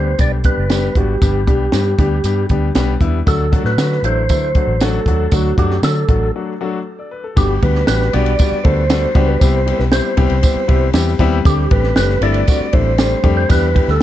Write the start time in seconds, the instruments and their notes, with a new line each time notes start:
Already playing: fingered electric bass D2, grand piano B3 G4, tonewheel organ C5
0.18 fingered electric bass B1, grand piano G3 B3 D4 G4, tonewheel organ D5, kick, closed hi-hat, tambourine
0.44 grand piano G3 B3 D4 G4, tonewheel organ B4, kick, closed hi-hat
0.57 fingered electric bass F#1
0.70 grand piano G3 B3 D4 G4, snare, closed hi-hat, tambourine
0.95 fingered electric bass G#1, grand piano G3 B3 D4 F#4, tonewheel organ G4, kick, closed hi-hat
1.21 fingered electric bass G1, grand piano G3 B3 D4 G4, kick, closed hi-hat, tambourine
1.47 fingered electric bass B1, grand piano G3 B3 D4 G4, kick, closed hi-hat
1.72 fingered electric bass G2, grand piano G3 B3 D4 G4, snare, closed hi-hat, tambourine
1.98 fingered electric bass D2, grand piano G3 B3 D4 G4, kick, closed hi-hat
2.24 fingered electric bass G2, grand piano G3 B3 D4 G4, closed hi-hat, tambourine
2.49 fingered electric bass D2, grand piano G3 B3 D4 G4, kick, closed hi-hat
2.75 fingered electric bass B1, grand piano G3 B3 D4 G4, snare, closed hi-hat, tambourine
3.01 fingered electric bass D#2, grand piano G3 B3 D4 E4, kick, closed hi-hat
3.26 fingered electric bass D2, grand piano F#3 A3 D4 F#4, tonewheel organ A4, kick, closed hi-hat, tambourine
3.52 grand piano F#3 A3 D4 F#4, kick, closed hi-hat
3.64 fingered electric bass A2, tonewheel organ B4, snare
3.77 fingered electric bass D3, grand piano F#3 A3 D4 F#4, snare, closed hi-hat, tambourine
3.92 snare
4.02 fingered electric bass A1, grand piano F#3 A3 D4 E4, tonewheel organ C5, closed hi-hat
4.29 fingered electric bass D2, grand piano F#3 A3 D4 E4, kick, closed hi-hat, tambourine
4.55 grand piano F#3 A3 D4 F#4, kick, closed hi-hat
4.67 fingered electric bass A1
4.80 grand piano F#3 A3 D4 F#4, tonewheel organ A4, snare, closed hi-hat, tambourine
5.06 fingered electric bass D#2, grand piano F#3 A3 D4 F#4, kick, closed hi-hat
5.31 fingered electric bass D2, grand piano F#3 A3 D4 F#4, tonewheel organ F#4, kick, closed hi-hat, tambourine
5.58 fingered electric bass F#2, grand piano F#3 A3 D4 F#4, tonewheel organ G4, kick, closed hi-hat
5.71 snare
5.82 fingered electric bass D3, grand piano F#3 A3 D4 F#4, tonewheel organ A4, snare, closed hi-hat, tambourine
6.08 fingered electric bass A1, grand piano F#3 A3 D4 F#4, kick, closed hi-hat
6.35 grand piano F#3 A3 D4 F#4
6.61 grand piano F#3 A3 D4 F#4
6.99 grand piano D5
7.11 grand piano B4
7.24 grand piano A4
7.36 fingered electric bass G1, grand piano G3 B3 D4 F#4 G4, tonewheel organ G4, kick, ride, tambourine
7.62 fingered electric bass D2, grand piano G3 B3 D4 F#4 G4, tonewheel organ B4, kick, ride
7.75 snare
7.87 fingered electric bass A1, grand piano G3 B3 D4 F#4 G4, tonewheel organ B4, snare, ride, tambourine
8.02 snare
8.13 fingered electric bass B1, grand piano G3 B3 D4 F#4 G4, tonewheel organ D5, ride
8.26 ride
8.39 grand piano G3 B3 D4 F#4 G4, kick, ride, tambourine
8.52 muted fingered electric bass stroke
8.64 fingered electric bass D2, grand piano G3 B3 D4 F#4 A4, tonewheel organ C5, kick, ride
8.90 grand piano G3 B3 D4 F#4 A4, snare, ride, tambourine
9.15 fingered electric bass C#2, grand piano G3 B3 D4 F#4 G4, kick, ride
9.28 tonewheel organ B4
9.40 fingered electric bass C2, grand piano G3 B3 C4 E4 G4, tonewheel organ C5, kick, ride, tambourine
9.66 grand piano G3 B3 C4 E4 G4, ride
9.78 fingered electric bass B1, tonewheel organ B4, snare
9.92 grand piano G3 B3 C4 E4 G4, tonewheel organ C5, snare, ride, tambourine
10.17 fingered electric bass C2, grand piano G3 B3 C4 E4 G4, kick, ride
10.30 fingered electric bass C2, ride
10.42 grand piano G3 B3 C4 E4 G4, kick, ride, tambourine
10.55 muted fingered electric bass stroke
10.68 fingered electric bass C2, grand piano G3 B3 C4 E4 G4, kick, ride
10.93 fingered electric bass E2, grand piano G3 B3 C4 E4 G4, snare, ride, tambourine
11.19 fingered electric bass D#2, grand piano G3 B3 C4 E4 G4, kick, ride
11.45 fingered electric bass D2, grand piano G3 A3 C4 D4 G4, tonewheel organ G4, kick, ride, tambourine
11.71 fingered electric bass A1, grand piano G3 A3 C4 D4 G4, tonewheel organ B4, kick, ride
11.84 snare
11.96 fingered electric bass F#1, grand piano G3 A3 C4 D4 G4, tonewheel organ B4, snare, ride, tambourine
12.10 snare
12.21 fingered electric bass G1, grand piano G3 A3 C4 D4 E4, tonewheel organ D5, ride
12.34 ride
12.47 grand piano G3 A3 C4 D4 F#4, kick, ride, tambourine
12.60 muted fingered electric bass stroke
12.73 fingered electric bass A1, grand piano G3 A3 C4 D4 E4, tonewheel organ C5, kick, ride
12.98 grand piano G3 A3 C4 D4 G4, snare, ride, tambourine
13.23 fingered electric bass F2, grand piano G3 A3 C4 D4 G4, kick, ride
13.37 tonewheel organ C5
13.49 fingered electric bass E2, grand piano G3 B3 D4 E4 G4, tonewheel organ B4, kick, ride, tambourine
13.75 grand piano G3 B3 D4 E4 G4, kick, ride
13.88 fingered electric bass D2, tonewheel organ A4, snare